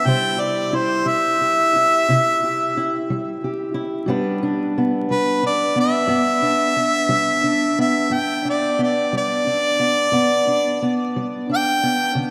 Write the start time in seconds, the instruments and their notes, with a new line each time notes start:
0.05 steel-string acoustic guitar C3 G3 E4 G4 C5, harmonica G5
0.39 steel-string acoustic guitar G4, harmonica D5
0.73 steel-string acoustic guitar E4, harmonica C5
1.06 steel-string acoustic guitar G3, harmonica E5
1.41 steel-string acoustic guitar G4
1.76 steel-string acoustic guitar E4
2.08 steel-string acoustic guitar C3 E4
2.44 steel-string acoustic guitar G4
2.77 steel-string acoustic guitar E4
3.10 steel-string acoustic guitar G3
3.44 steel-string acoustic guitar G4
3.74 steel-string acoustic guitar E4
4.06 steel-string acoustic guitar G2 G3 B3 D4 B4
4.43 steel-string acoustic guitar D4
4.78 steel-string acoustic guitar B3
5.11 steel-string acoustic guitar G3, harmonica B4
5.43 steel-string acoustic guitar D4, harmonica D5
5.76 steel-string acoustic guitar B3
5.80 harmonica E5
6.07 steel-string acoustic guitar G2 B3
6.42 steel-string acoustic guitar D4
6.77 steel-string acoustic guitar B3
7.09 steel-string acoustic guitar G3
7.44 steel-string acoustic guitar D4
7.79 steel-string acoustic guitar B3, harmonica E5
8.10 steel-string acoustic guitar G2 B3, harmonica G5
8.45 steel-string acoustic guitar D4
8.49 harmonica D5
8.79 steel-string acoustic guitar B3
8.83 harmonica D5
9.13 steel-string acoustic guitar G3
9.17 harmonica D5
9.47 steel-string acoustic guitar D4
9.80 steel-string acoustic guitar B3
10.12 steel-string acoustic guitar G2 B3
10.47 steel-string acoustic guitar D4
10.82 steel-string acoustic guitar B3
11.16 steel-string acoustic guitar G3
11.49 steel-string acoustic guitar D4
11.54 harmonica G5
11.83 steel-string acoustic guitar B3
12.15 steel-string acoustic guitar D3 B3